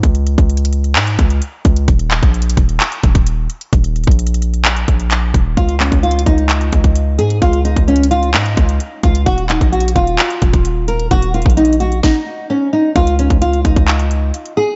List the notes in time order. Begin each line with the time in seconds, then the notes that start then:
0.03 C#2, kick, closed hi-hat
0.15 closed hi-hat
0.27 closed hi-hat
0.38 C#2, kick, closed hi-hat
0.50 closed hi-hat
0.57 closed hi-hat
0.65 closed hi-hat
0.73 closed hi-hat
0.84 closed hi-hat
0.96 G#2, clap, closed hi-hat
1.07 closed hi-hat
1.19 C#2, kick, closed hi-hat
1.30 closed hi-hat
1.42 closed hi-hat
1.65 C#2, kick, closed hi-hat
1.76 closed hi-hat
1.88 D#1, kick, closed hi-hat
1.99 closed hi-hat
2.11 clap, closed hi-hat
2.23 A#1, kick, closed hi-hat
2.34 closed hi-hat
2.42 closed hi-hat
2.50 closed hi-hat
2.57 D#1, kick, closed hi-hat
2.69 closed hi-hat
2.80 clap, closed hi-hat
2.92 closed hi-hat
3.03 D#1, kick, closed hi-hat
3.15 kick, closed hi-hat
3.27 closed hi-hat
3.50 closed hi-hat
3.61 closed hi-hat
3.73 D#1, kick, closed hi-hat
3.84 closed hi-hat
3.96 closed hi-hat
4.04 A#1, kick, closed hi-hat
4.11 closed hi-hat
4.19 closed hi-hat
4.27 closed hi-hat
4.34 closed hi-hat
4.42 closed hi-hat
4.54 closed hi-hat
4.65 clap, closed hi-hat
4.77 closed hi-hat
4.88 A#1, kick, closed hi-hat
5.00 closed hi-hat
5.11 clap, closed hi-hat
5.34 D#1, kick, closed hi-hat
5.57 C#2 F4, kick, closed hi-hat
5.69 closed hi-hat
5.80 C#4, clap, closed hi-hat
5.92 C#2, kick, closed hi-hat
6.03 F4, closed hi-hat
6.11 closed hi-hat
6.19 closed hi-hat
6.26 C#2 D#4, kick, closed hi-hat
6.38 closed hi-hat
6.49 clap, closed hi-hat
6.61 closed hi-hat
6.72 C#2, kick, closed hi-hat
6.84 kick, closed hi-hat
6.96 closed hi-hat
7.19 G#2 G#4, closed hi-hat
7.30 closed hi-hat
7.42 C#2 F4, kick, closed hi-hat
7.53 closed hi-hat
7.65 D#4, closed hi-hat
7.76 C#2, kick, closed hi-hat
7.88 C#4, closed hi-hat
7.96 closed hi-hat
8.03 closed hi-hat
8.11 F4, closed hi-hat
8.23 closed hi-hat
8.34 G#2 D#4, clap, closed hi-hat
8.46 closed hi-hat
8.57 C#2, kick, closed hi-hat
8.69 closed hi-hat
8.80 closed hi-hat
9.03 C#2 F4, kick, closed hi-hat
9.15 closed hi-hat
9.26 D#1 F#4, kick, closed hi-hat
9.38 closed hi-hat
9.49 D#4, clap, closed hi-hat
9.61 A#1, kick, closed hi-hat
9.72 F#4, closed hi-hat
9.80 closed hi-hat
9.88 closed hi-hat
9.96 D#1 F4, kick, closed hi-hat
10.07 closed hi-hat
10.19 clap, closed hi-hat
10.30 closed hi-hat
10.42 D#1, kick, closed hi-hat
10.53 D#1, kick, closed hi-hat
10.65 closed hi-hat
10.88 A#4, closed hi-hat
11.00 closed hi-hat
11.11 D#1 F#4, kick, closed hi-hat
11.22 closed hi-hat
11.34 F4, closed hi-hat
11.42 A#1, kick, closed hi-hat
11.50 closed hi-hat
11.57 D#4, closed hi-hat
11.65 closed hi-hat
11.73 closed hi-hat
11.80 F#4, closed hi-hat
11.92 closed hi-hat
12.03 D#4, kick, snare
12.50 C#4
12.73 D#4
12.96 C#2 F4, kick, closed hi-hat
13.07 closed hi-hat
13.19 C#4, closed hi-hat
13.30 C#2, kick, closed hi-hat
13.42 F4, closed hi-hat
13.53 closed hi-hat
13.65 C#2 D#4, kick, closed hi-hat
13.76 C#2, kick, closed hi-hat
13.88 clap, closed hi-hat
13.99 closed hi-hat
14.11 closed hi-hat
14.34 closed hi-hat
14.46 closed hi-hat
14.57 G#4